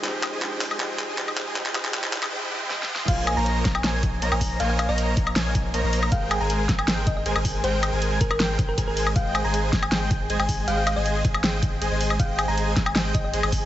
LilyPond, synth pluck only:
\new Staff \with { instrumentName = "Synth pluck" } { \time 4/4 \key aes \major \tempo 4 = 158 r1 | r1 | f''8 aes''16 bes''8 r8 aes''8 r4 aes''8 r16 | f''16 f''16 f''16 ees''8. r2 r8 |
f''8 aes''16 bes''8 r8 aes''8 r16 ees''16 ees''16 r4 | c''8 r4 bes'16 bes'8 r8 bes'16 bes'16 bes'8. | f''8 aes''16 bes''8 r8 aes''8 r4 aes''8 r16 | f''16 f''16 f''16 ees''8. r2 r8 |
f''8 aes''16 bes''8 r8 aes''8 r16 ees''16 ees''16 r4 | }